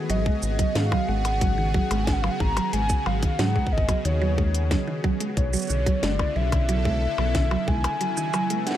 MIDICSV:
0, 0, Header, 1, 7, 480
1, 0, Start_track
1, 0, Tempo, 659341
1, 70, Time_signature, 4, 2, 24, 8
1, 6385, End_track
2, 0, Start_track
2, 0, Title_t, "Soft synth lead"
2, 0, Program_c, 0, 80
2, 70, Note_on_c, 0, 75, 98
2, 549, Note_on_c, 0, 77, 104
2, 560, Note_off_c, 0, 75, 0
2, 789, Note_on_c, 0, 78, 108
2, 800, Note_off_c, 0, 77, 0
2, 1484, Note_on_c, 0, 80, 90
2, 1495, Note_off_c, 0, 78, 0
2, 1550, Note_on_c, 0, 78, 87
2, 1561, Note_off_c, 0, 80, 0
2, 1616, Note_on_c, 0, 77, 85
2, 1627, Note_off_c, 0, 78, 0
2, 1682, Note_on_c, 0, 78, 90
2, 1693, Note_off_c, 0, 77, 0
2, 1750, Note_on_c, 0, 82, 114
2, 1761, Note_off_c, 0, 78, 0
2, 1985, Note_off_c, 0, 82, 0
2, 1990, Note_on_c, 0, 80, 116
2, 2230, Note_on_c, 0, 77, 100
2, 2241, Note_off_c, 0, 80, 0
2, 2470, Note_on_c, 0, 78, 109
2, 2481, Note_off_c, 0, 77, 0
2, 2710, Note_on_c, 0, 75, 94
2, 2721, Note_off_c, 0, 78, 0
2, 2946, Note_off_c, 0, 75, 0
2, 2950, Note_on_c, 0, 73, 85
2, 3641, Note_off_c, 0, 73, 0
2, 3909, Note_on_c, 0, 73, 97
2, 4390, Note_on_c, 0, 74, 96
2, 4401, Note_off_c, 0, 73, 0
2, 4630, Note_on_c, 0, 76, 111
2, 4641, Note_off_c, 0, 74, 0
2, 5591, Note_on_c, 0, 80, 127
2, 5601, Note_off_c, 0, 76, 0
2, 6311, Note_on_c, 0, 78, 111
2, 6322, Note_off_c, 0, 80, 0
2, 6385, Note_off_c, 0, 78, 0
2, 6385, End_track
3, 0, Start_track
3, 0, Title_t, "Analog synth pad"
3, 0, Program_c, 1, 89
3, 0, Note_on_c, 1, 59, 83
3, 0, Note_on_c, 1, 66, 77
3, 0, Note_on_c, 1, 68, 86
3, 71, Note_on_c, 1, 49, 85
3, 3908, Note_on_c, 1, 50, 80
3, 3910, Note_off_c, 1, 49, 0
3, 3910, Note_off_c, 1, 68, 0
3, 4034, Note_on_c, 1, 49, 91
3, 4450, Note_on_c, 1, 64, 92
3, 4678, Note_off_c, 1, 66, 0
3, 4773, Note_on_c, 1, 69, 85
3, 5829, Note_off_c, 1, 50, 0
3, 5829, Note_off_c, 1, 69, 0
3, 5830, Note_off_c, 1, 59, 0
3, 5831, Note_on_c, 1, 54, 70
3, 6109, Note_on_c, 1, 57, 75
3, 6119, Note_on_c, 1, 59, 74
3, 6385, Note_off_c, 1, 49, 0
3, 6385, Note_off_c, 1, 54, 0
3, 6385, Note_off_c, 1, 57, 0
3, 6385, Note_off_c, 1, 59, 0
3, 6385, Note_off_c, 1, 64, 0
3, 6385, End_track
4, 0, Start_track
4, 0, Title_t, "Synth arpeggio sound"
4, 0, Program_c, 2, 84
4, 70, Note_on_c, 2, 54, 112
4, 153, Note_off_c, 2, 54, 0
4, 190, Note_on_c, 2, 56, 77
4, 273, Note_off_c, 2, 56, 0
4, 429, Note_on_c, 2, 54, 78
4, 479, Note_off_c, 2, 54, 0
4, 550, Note_on_c, 2, 51, 85
4, 633, Note_off_c, 2, 51, 0
4, 669, Note_on_c, 2, 54, 101
4, 752, Note_off_c, 2, 54, 0
4, 789, Note_on_c, 2, 56, 81
4, 872, Note_off_c, 2, 56, 0
4, 1029, Note_on_c, 2, 54, 85
4, 1079, Note_off_c, 2, 54, 0
4, 1149, Note_on_c, 2, 51, 81
4, 1232, Note_off_c, 2, 51, 0
4, 1269, Note_on_c, 2, 54, 101
4, 1352, Note_off_c, 2, 54, 0
4, 1390, Note_on_c, 2, 56, 79
4, 1473, Note_off_c, 2, 56, 0
4, 1629, Note_on_c, 2, 54, 77
4, 1679, Note_off_c, 2, 54, 0
4, 1749, Note_on_c, 2, 51, 85
4, 1832, Note_off_c, 2, 51, 0
4, 1870, Note_on_c, 2, 54, 101
4, 1952, Note_off_c, 2, 54, 0
4, 1989, Note_on_c, 2, 56, 87
4, 2072, Note_off_c, 2, 56, 0
4, 2229, Note_on_c, 2, 54, 78
4, 2279, Note_off_c, 2, 54, 0
4, 2349, Note_on_c, 2, 51, 75
4, 2432, Note_off_c, 2, 51, 0
4, 2469, Note_on_c, 2, 54, 108
4, 2552, Note_off_c, 2, 54, 0
4, 2589, Note_on_c, 2, 56, 75
4, 2672, Note_off_c, 2, 56, 0
4, 2828, Note_on_c, 2, 54, 73
4, 2879, Note_off_c, 2, 54, 0
4, 2949, Note_on_c, 2, 51, 80
4, 3032, Note_off_c, 2, 51, 0
4, 3069, Note_on_c, 2, 54, 105
4, 3152, Note_off_c, 2, 54, 0
4, 3189, Note_on_c, 2, 56, 78
4, 3272, Note_off_c, 2, 56, 0
4, 3429, Note_on_c, 2, 54, 91
4, 3479, Note_off_c, 2, 54, 0
4, 3548, Note_on_c, 2, 51, 78
4, 3632, Note_off_c, 2, 51, 0
4, 3669, Note_on_c, 2, 54, 113
4, 3752, Note_off_c, 2, 54, 0
4, 3789, Note_on_c, 2, 56, 78
4, 3872, Note_off_c, 2, 56, 0
4, 4029, Note_on_c, 2, 54, 77
4, 4079, Note_off_c, 2, 54, 0
4, 4149, Note_on_c, 2, 50, 79
4, 4232, Note_off_c, 2, 50, 0
4, 4269, Note_on_c, 2, 54, 98
4, 4352, Note_off_c, 2, 54, 0
4, 4389, Note_on_c, 2, 56, 86
4, 4472, Note_off_c, 2, 56, 0
4, 4629, Note_on_c, 2, 54, 79
4, 4679, Note_off_c, 2, 54, 0
4, 4749, Note_on_c, 2, 50, 73
4, 4832, Note_off_c, 2, 50, 0
4, 4869, Note_on_c, 2, 54, 98
4, 4952, Note_off_c, 2, 54, 0
4, 4989, Note_on_c, 2, 56, 75
4, 5072, Note_off_c, 2, 56, 0
4, 5230, Note_on_c, 2, 54, 78
4, 5279, Note_off_c, 2, 54, 0
4, 5349, Note_on_c, 2, 50, 85
4, 5432, Note_off_c, 2, 50, 0
4, 5469, Note_on_c, 2, 54, 99
4, 5552, Note_off_c, 2, 54, 0
4, 5589, Note_on_c, 2, 56, 84
4, 5672, Note_off_c, 2, 56, 0
4, 5829, Note_on_c, 2, 54, 89
4, 5879, Note_off_c, 2, 54, 0
4, 5949, Note_on_c, 2, 51, 78
4, 6032, Note_off_c, 2, 51, 0
4, 6069, Note_on_c, 2, 54, 103
4, 6152, Note_off_c, 2, 54, 0
4, 6189, Note_on_c, 2, 56, 76
4, 6272, Note_off_c, 2, 56, 0
4, 6385, End_track
5, 0, Start_track
5, 0, Title_t, "Analog synth bass"
5, 0, Program_c, 3, 38
5, 70, Note_on_c, 3, 32, 101
5, 214, Note_off_c, 3, 32, 0
5, 310, Note_on_c, 3, 32, 88
5, 454, Note_off_c, 3, 32, 0
5, 550, Note_on_c, 3, 44, 96
5, 694, Note_off_c, 3, 44, 0
5, 790, Note_on_c, 3, 32, 96
5, 1313, Note_off_c, 3, 32, 0
5, 1390, Note_on_c, 3, 32, 99
5, 1673, Note_off_c, 3, 32, 0
5, 1749, Note_on_c, 3, 32, 99
5, 1894, Note_off_c, 3, 32, 0
5, 1990, Note_on_c, 3, 32, 104
5, 2134, Note_off_c, 3, 32, 0
5, 2230, Note_on_c, 3, 32, 92
5, 2374, Note_off_c, 3, 32, 0
5, 2469, Note_on_c, 3, 44, 91
5, 2614, Note_off_c, 3, 44, 0
5, 2709, Note_on_c, 3, 32, 93
5, 2854, Note_off_c, 3, 32, 0
5, 2949, Note_on_c, 3, 39, 94
5, 3473, Note_off_c, 3, 39, 0
5, 3909, Note_on_c, 3, 35, 104
5, 4054, Note_off_c, 3, 35, 0
5, 4150, Note_on_c, 3, 35, 85
5, 4294, Note_off_c, 3, 35, 0
5, 4390, Note_on_c, 3, 30, 94
5, 4534, Note_off_c, 3, 30, 0
5, 4630, Note_on_c, 3, 35, 95
5, 5153, Note_off_c, 3, 35, 0
5, 5230, Note_on_c, 3, 35, 94
5, 5513, Note_off_c, 3, 35, 0
5, 5590, Note_on_c, 3, 35, 104
5, 5734, Note_off_c, 3, 35, 0
5, 6385, End_track
6, 0, Start_track
6, 0, Title_t, "Percussion blips"
6, 670, Note_on_c, 9, 76, 59
6, 742, Note_off_c, 9, 76, 0
6, 909, Note_on_c, 9, 76, 48
6, 982, Note_off_c, 9, 76, 0
6, 1389, Note_on_c, 9, 76, 51
6, 1462, Note_off_c, 9, 76, 0
6, 1629, Note_on_c, 9, 76, 60
6, 1702, Note_off_c, 9, 76, 0
6, 1869, Note_on_c, 9, 76, 78
6, 1942, Note_off_c, 9, 76, 0
6, 2229, Note_on_c, 9, 76, 59
6, 2301, Note_off_c, 9, 76, 0
6, 2829, Note_on_c, 9, 76, 51
6, 2902, Note_off_c, 9, 76, 0
6, 4509, Note_on_c, 9, 76, 62
6, 4582, Note_off_c, 9, 76, 0
6, 4749, Note_on_c, 9, 76, 54
6, 4822, Note_off_c, 9, 76, 0
6, 5229, Note_on_c, 9, 76, 53
6, 5302, Note_off_c, 9, 76, 0
6, 5469, Note_on_c, 9, 76, 61
6, 5542, Note_off_c, 9, 76, 0
6, 5709, Note_on_c, 9, 76, 83
6, 5782, Note_off_c, 9, 76, 0
6, 6070, Note_on_c, 9, 76, 67
6, 6142, Note_off_c, 9, 76, 0
6, 6385, End_track
7, 0, Start_track
7, 0, Title_t, "Drums"
7, 70, Note_on_c, 9, 42, 48
7, 143, Note_off_c, 9, 42, 0
7, 190, Note_on_c, 9, 36, 109
7, 263, Note_off_c, 9, 36, 0
7, 310, Note_on_c, 9, 69, 61
7, 383, Note_off_c, 9, 69, 0
7, 430, Note_on_c, 9, 36, 118
7, 430, Note_on_c, 9, 42, 66
7, 502, Note_off_c, 9, 36, 0
7, 502, Note_off_c, 9, 42, 0
7, 549, Note_on_c, 9, 38, 118
7, 549, Note_on_c, 9, 42, 48
7, 622, Note_off_c, 9, 38, 0
7, 622, Note_off_c, 9, 42, 0
7, 670, Note_on_c, 9, 36, 98
7, 742, Note_off_c, 9, 36, 0
7, 909, Note_on_c, 9, 42, 58
7, 982, Note_off_c, 9, 42, 0
7, 1029, Note_on_c, 9, 36, 121
7, 1029, Note_on_c, 9, 42, 50
7, 1102, Note_off_c, 9, 36, 0
7, 1102, Note_off_c, 9, 42, 0
7, 1269, Note_on_c, 9, 36, 105
7, 1342, Note_off_c, 9, 36, 0
7, 1389, Note_on_c, 9, 42, 65
7, 1462, Note_off_c, 9, 42, 0
7, 1509, Note_on_c, 9, 36, 123
7, 1509, Note_on_c, 9, 38, 125
7, 1509, Note_on_c, 9, 42, 51
7, 1582, Note_off_c, 9, 36, 0
7, 1582, Note_off_c, 9, 38, 0
7, 1582, Note_off_c, 9, 42, 0
7, 1749, Note_on_c, 9, 36, 98
7, 1822, Note_off_c, 9, 36, 0
7, 1869, Note_on_c, 9, 42, 64
7, 1942, Note_off_c, 9, 42, 0
7, 1989, Note_on_c, 9, 42, 53
7, 2062, Note_off_c, 9, 42, 0
7, 2108, Note_on_c, 9, 69, 81
7, 2109, Note_on_c, 9, 36, 122
7, 2181, Note_off_c, 9, 69, 0
7, 2182, Note_off_c, 9, 36, 0
7, 2349, Note_on_c, 9, 36, 99
7, 2349, Note_on_c, 9, 42, 60
7, 2421, Note_off_c, 9, 42, 0
7, 2422, Note_off_c, 9, 36, 0
7, 2469, Note_on_c, 9, 38, 115
7, 2469, Note_on_c, 9, 42, 51
7, 2542, Note_off_c, 9, 38, 0
7, 2542, Note_off_c, 9, 42, 0
7, 2589, Note_on_c, 9, 36, 51
7, 2662, Note_off_c, 9, 36, 0
7, 2669, Note_on_c, 9, 36, 66
7, 2742, Note_off_c, 9, 36, 0
7, 2749, Note_on_c, 9, 36, 97
7, 2822, Note_off_c, 9, 36, 0
7, 2829, Note_on_c, 9, 36, 104
7, 2829, Note_on_c, 9, 42, 62
7, 2902, Note_off_c, 9, 36, 0
7, 2902, Note_off_c, 9, 42, 0
7, 2949, Note_on_c, 9, 42, 47
7, 3022, Note_off_c, 9, 42, 0
7, 3189, Note_on_c, 9, 36, 117
7, 3262, Note_off_c, 9, 36, 0
7, 3309, Note_on_c, 9, 42, 61
7, 3382, Note_off_c, 9, 42, 0
7, 3429, Note_on_c, 9, 36, 100
7, 3429, Note_on_c, 9, 38, 121
7, 3429, Note_on_c, 9, 42, 53
7, 3502, Note_off_c, 9, 36, 0
7, 3502, Note_off_c, 9, 38, 0
7, 3502, Note_off_c, 9, 42, 0
7, 3669, Note_on_c, 9, 36, 106
7, 3742, Note_off_c, 9, 36, 0
7, 3789, Note_on_c, 9, 42, 62
7, 3862, Note_off_c, 9, 42, 0
7, 3909, Note_on_c, 9, 36, 100
7, 3909, Note_on_c, 9, 42, 48
7, 3982, Note_off_c, 9, 36, 0
7, 3982, Note_off_c, 9, 42, 0
7, 4029, Note_on_c, 9, 69, 77
7, 4049, Note_off_c, 9, 69, 0
7, 4049, Note_on_c, 9, 69, 64
7, 4069, Note_off_c, 9, 69, 0
7, 4069, Note_on_c, 9, 69, 55
7, 4089, Note_off_c, 9, 69, 0
7, 4089, Note_on_c, 9, 69, 44
7, 4110, Note_off_c, 9, 69, 0
7, 4110, Note_on_c, 9, 69, 37
7, 4130, Note_off_c, 9, 69, 0
7, 4130, Note_on_c, 9, 69, 30
7, 4149, Note_off_c, 9, 69, 0
7, 4149, Note_on_c, 9, 69, 66
7, 4222, Note_off_c, 9, 69, 0
7, 4269, Note_on_c, 9, 36, 117
7, 4270, Note_on_c, 9, 42, 64
7, 4342, Note_off_c, 9, 36, 0
7, 4343, Note_off_c, 9, 42, 0
7, 4389, Note_on_c, 9, 38, 112
7, 4389, Note_on_c, 9, 42, 53
7, 4462, Note_off_c, 9, 38, 0
7, 4462, Note_off_c, 9, 42, 0
7, 4509, Note_on_c, 9, 36, 93
7, 4582, Note_off_c, 9, 36, 0
7, 4749, Note_on_c, 9, 36, 121
7, 4749, Note_on_c, 9, 42, 63
7, 4822, Note_off_c, 9, 36, 0
7, 4822, Note_off_c, 9, 42, 0
7, 4868, Note_on_c, 9, 42, 50
7, 4941, Note_off_c, 9, 42, 0
7, 4989, Note_on_c, 9, 36, 98
7, 5062, Note_off_c, 9, 36, 0
7, 5349, Note_on_c, 9, 36, 119
7, 5349, Note_on_c, 9, 38, 121
7, 5349, Note_on_c, 9, 42, 54
7, 5422, Note_off_c, 9, 36, 0
7, 5422, Note_off_c, 9, 38, 0
7, 5422, Note_off_c, 9, 42, 0
7, 5589, Note_on_c, 9, 36, 102
7, 5662, Note_off_c, 9, 36, 0
7, 5709, Note_on_c, 9, 42, 65
7, 5782, Note_off_c, 9, 42, 0
7, 5829, Note_on_c, 9, 42, 54
7, 5902, Note_off_c, 9, 42, 0
7, 5950, Note_on_c, 9, 69, 84
7, 6022, Note_off_c, 9, 69, 0
7, 6070, Note_on_c, 9, 69, 63
7, 6142, Note_off_c, 9, 69, 0
7, 6189, Note_on_c, 9, 42, 67
7, 6262, Note_off_c, 9, 42, 0
7, 6309, Note_on_c, 9, 38, 53
7, 6309, Note_on_c, 9, 42, 52
7, 6339, Note_off_c, 9, 38, 0
7, 6339, Note_on_c, 9, 38, 60
7, 6382, Note_off_c, 9, 42, 0
7, 6385, Note_off_c, 9, 38, 0
7, 6385, End_track
0, 0, End_of_file